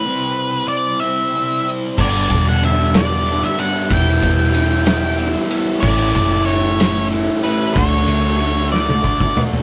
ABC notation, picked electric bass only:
X:1
M:6/8
L:1/8
Q:3/8=62
K:D
V:1 name="Picked electric bass" clef=bass
z6 | G,,, E,,,4 z | E,,, E,,,4 z | A,,, F,,,4 z |
D,, D,,4 z |]